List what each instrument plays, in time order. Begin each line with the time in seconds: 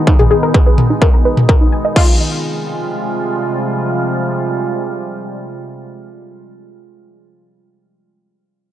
Already playing: ambient pad B2 D#3 G#3 B3 D#4
0.07 synth pluck D#4, kick
0.19 synth pluck G#4, mid tom
0.31 synth pluck G#4
0.43 synth pluck A#4
0.54 synth pluck B4, kick
0.67 synth pluck B4
0.78 mid tom
0.90 synth pluck D#4
1.02 synth pluck A#4, kick
1.14 synth pluck A#4
1.25 synth pluck B4
1.37 mid tom
1.49 synth pluck A#4, kick
1.61 synth pluck D#4
1.72 synth pluck G#5
1.85 synth pluck D#5
1.96 ambient pad C3 F3 G3 G#3 F4, synth pluck F4, kick, crash